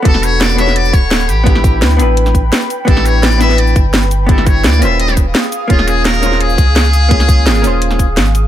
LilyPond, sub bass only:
\new Staff \with { instrumentName = "Sub bass" } { \clef bass \time 4/4 \key a \mixolydian \tempo 4 = 170 e,,2~ e,,8 d,,4 a,,8~ | a,,4 d,8 a,,4 a,,8 r4 | a,,2~ a,,8 g,,4.~ | g,,4 d,8 dis,,4 dis,,8 r4 |
dis,,2~ dis,,8 cis,4.~ | cis,4 gis,,8 dis,,4. gis,,4 | }